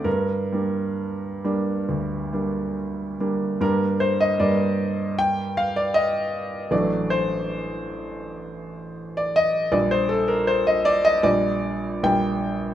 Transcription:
<<
  \new Staff \with { instrumentName = "Grand piano" } { \time 4/4 \key g \minor \tempo 4 = 77 bes'2. r4 | bes'8 c''16 ees''16 d''4 g''8 f''16 d''16 ees''4 | d''8 c''2~ c''8. d''16 ees''8 | d''16 c''16 a'16 bes'16 c''16 ees''16 d''16 ees''16 d''4 g''4 | }
  \new Staff \with { instrumentName = "Grand piano" } { \clef bass \time 4/4 \key g \minor g,8 <g bes d'>4 <g bes d'>8 d,8 <g bes d'>4 <g bes d'>8 | <g, g bes d'>4 <g, g bes d'>2. | <a,, fis a d'>1 | <bes,, g d'>2 <bes,, g d'>4 <bes,, g d'>4 | }
>>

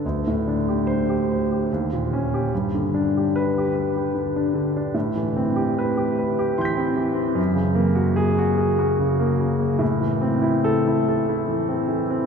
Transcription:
\new Staff \with { instrumentName = "Grand piano" } { \time 3/4 \key a \dorian \tempo 4 = 73 << { r4 c''8 r4 r16 g'16 | r4 b'8 r4. | r4 b'8 r8 <c''' g''' b'''>4 | r4 gis'8 r4. |
r4 a'8 r4. | } \\ { d,16 a,16 d'16 g'8 g'16 c''16 g'16 ees,16 bes,16 des'8 | g,16 d16 d'16 g'8 g'16 b'16 g'16 d16 d'16 d16 d'16 | a,16 e16 c'16 g'8 g'16 b'16 g'16 e16 c'16 e16 c'16 | fis,16 cis16 ais16 fis'8 fis'16 gis'16 fis'16 cis16 ais16 cis16 ais16 |
a,16 e16 c'16 e'8 e'16 a'16 e'16 e16 c'16 e16 c'16 | } >> }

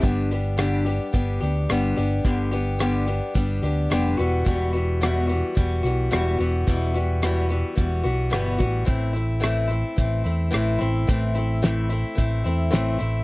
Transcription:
<<
  \new Staff \with { instrumentName = "Steel-string acoustic guitar" } { \time 4/4 \key g \major \tempo 4 = 109 <g, d g b d' g'>8 <g b d' g'>8 <g, d g b d' g'>8 <g b d' g'>8 <g b d' g'>8 <g b d' g'>8 <g, d g b d' g'>8 <g b d' g'>8 | <g, d g b d' g'>8 <g b d' g'>8 <g, d g b d' g'>8 <g b d' g'>8 <g b d' g'>8 <g b d' g'>8 <g, d g b d' g'>8 <e g b fis'>8 | <e, b, e g b fis'>8 <e g b fis'>8 <e, b, e g b fis'>8 <e g b fis'>8 <e g b fis'>8 <e g b fis'>8 <e, b, e g b fis'>8 <e g b fis'>8 | <e, b, e g b fis'>8 <e g b fis'>8 <e, b, e g b fis'>8 <e g b fis'>8 <e g b fis'>8 <e g b fis'>8 <e, b, e g b fis'>8 <e g b fis'>8 |
<a, e a c' e'>8 <a c' e'>8 <a, e a c' e'>8 <a c' e'>8 <e a c' e'>8 <a c' e'>8 <a, e a c' e'>8 <a c' e'>8 | <a, e a c' e'>8 <a c' e'>8 <a, e a c' e'>8 <a c' e'>8 <e a c' e'>8 <a c' e'>8 <a, e a c' e'>8 <a c' e'>8 | }
  \new Staff \with { instrumentName = "Fingered electric bass" } { \clef bass \time 4/4 \key g \major g,,2 g,,8 d,8 g,,8 g,,8 | g,,2 g,,8 d,8 f,,8 e,,8 | e,,2 e,,8 b,,8 e,,8 e,,8 | e,,2 e,,8 b,,8 g,,8 a,,8 |
a,,2 a,,8 e,8 a,,8 a,,8 | a,,2 a,,8 e,8 a,,8 a,,8 | }
  \new DrumStaff \with { instrumentName = "Drums" } \drummode { \time 4/4 <hh bd>8 hh8 <hh ss>8 hh8 <hh bd>8 hh8 <hh ss>8 hh8 | <hh bd>8 hh8 <hh ss>8 hh8 <hh bd>8 hh8 <hh ss>8 hh8 | <hh bd>8 hh8 <hh ss>8 hh8 <hh bd>8 hh8 <hh ss>8 hh8 | <hh bd>8 hh8 <hh ss>8 hh8 <hh bd>8 hh8 <hh ss>8 <hh bd>8 |
<hh bd>8 hh8 <hh ss>8 hh8 <hh bd>8 hh8 <hh ss>8 hh8 | <hh bd>8 hh8 <hh sn>8 hh8 <hh bd>8 hh8 <hh sn>8 hh8 | }
>>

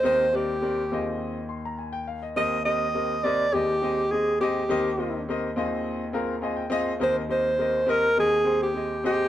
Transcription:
<<
  \new Staff \with { instrumentName = "Alto saxophone" } { \time 4/4 \key ees \major \tempo 4 = 103 c''8 g'4. r2 | ees''8 ees''4 d''8 g'4 aes'8 g'8~ | g'4 r2. | c''8 c''4 bes'8 aes'8. g'8. g'8 | }
  \new Staff \with { instrumentName = "Grand piano" } { \time 4/4 \key ees \major << { r2 r8 c'''16 bes''16 aes''16 g''16 f''16 ees''16~ | ees''16 r2. r8. | r2 r8 bes''8 aes''16 g''16 f''8 | r1 | } \\ { <c' g' bes' ees''>8 <c' g' bes' d''>8 <c' g' bes' d''>8 <c' f' aes' ees''>4 r4. | <c' g' bes' ees''>8 <c' g' bes' ees''>8 <c' g' bes' ees''>8 <c' g' bes' ees''>8 <c' g' aes' ees''>8 <c' g' aes' ees''>8 <c' g' aes' ees''>8 <c' g' aes' ees''>8 | <c' g' bes' ees''>8 <c' g' bes' ees''>8 <c' g' bes' ees''>8 <c' f' aes' ees''>4 <c' f' aes' bes'>8 <c' f' aes' ees''>8 <c' f' aes' ees''>8 | <c' g' bes' ees''>8 <c' g' bes' ees''>8 <c' g' bes' ees''>8 <c' g' bes' ees''>8 <c' g' aes' ees''>8 <c' g' aes' c''>8 <c' g' aes' ees''>8 <c' g' aes' ees''>8 | } >> }
  \new Staff \with { instrumentName = "Grand piano" } { \clef bass \time 4/4 \key ees \major <ees, ees>4. <ees, ees>2~ <ees, ees>8 | <ees, ees>2 <ees, ees>2 | <ees, ees>4. <ees, ees>2~ <ees, ees>8 | <ees, ees>2 <ees, ees>2 | }
>>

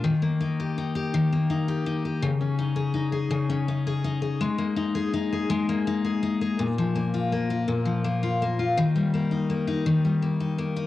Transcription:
\new Staff \with { instrumentName = "Steel-string acoustic guitar" } { \time 6/8 \key ees \major \tempo 4. = 55 ees16 bes16 ees'16 g'16 ees'16 g'16 ees16 bes16 ees'16 g'16 ees'16 g'16 | des16 des'16 ees'16 aes'16 ees'16 aes'16 des16 des'16 ees'16 aes'16 ees'16 aes'16 | aes16 bes16 ees'16 aes'16 ees'16 aes'16 aes16 bes16 ees'16 aes'16 ees'16 aes'16 | bes,16 f16 bes16 f'16 bes16 f'16 bes,16 f16 bes16 f'16 bes16 f'16 |
ees16 g16 bes16 ees'16 bes16 ees'16 ees16 g16 bes16 ees'16 bes16 ees'16 | }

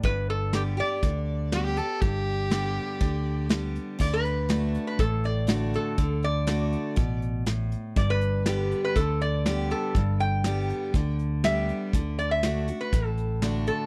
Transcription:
<<
  \new Staff \with { instrumentName = "Resonator guitar played with a steel bar" } { \time 4/4 \key d \major \tempo 4 = 121 b'8 a'8 g'8 d''2~ d''8~ | d''2. r4 | d''16 b'4. b'16 a'8 d''4 a'8~ | a'8 d''2 r4. |
d''16 b'4. b'16 a'8 d''4 a'8~ | a'8 g''2 r8 e''4~ | e''8 d''16 e''4 b'8 a'4~ a'16 a'8 | }
  \new Staff \with { instrumentName = "Fiddle" } { \time 4/4 \key d \major r2. fis'16 g'16 a'8 | g'2. r4 | r1 | r1 |
r1 | r1 | r1 | }
  \new Staff \with { instrumentName = "Steel-string acoustic guitar" } { \time 4/4 \key d \major << { r4 <d g b g'>8 <b g'>8 r4 <d g b g'>8 <b g'>8 | r4 <d g b g'>4 r4 <d g b g'>4 | r4 <d a d' fis'>4 r4 <d a d' fis'>4 | r4 <d a d' fis'>4 r2 |
r4 <d g b g'>4 r4 <d g b g'>4 | r4 <d g b g'>4 r4 <d g b g'>4 | r4 <d a d' fis'>8 <d' fis'>8 r4 <d a d' fis'>4 | } \\ { g,2 d2 | g,2 d2 | d2 a,2 | d2 b,4 a,4 |
g,2 d2 | g,2 d2 | d2 a,2 | } >> }
  \new Staff \with { instrumentName = "Fingered electric bass" } { \clef bass \time 4/4 \key d \major g,,2 d,2 | g,,2 d,2 | d,2 a,,2 | d,2 a,,2 |
g,,2 d,2 | g,,2 d,2 | d,2 a,,2 | }
  \new DrumStaff \with { instrumentName = "Drums" } \drummode { \time 4/4 <hh bd>4 <hh sn>4 <hh bd>4 <hh sn>8 hh8 | <hh bd>4 <hh sn>4 <hh bd>4 <hh sn>8 hh8 | <cymc bd>8 hh8 <hh sn>8 hh8 <hh bd>8 hh8 <hh sn>8 hh8 | <hh bd>8 hh8 <hh sn>8 hh8 <hh bd>8 hh8 <hh sn>8 hh8 |
<hh bd>8 hh8 <hh sn>8 hh8 <hh bd>8 hh8 <hh sn>8 hh8 | <hh bd>8 hh8 <hh sn>8 hh8 <hh bd>8 hh8 <hh sn>8 hh8 | <hh bd>8 hh8 <hh sn>8 hh8 <hh bd>8 hh8 <hh sn>8 hh8 | }
>>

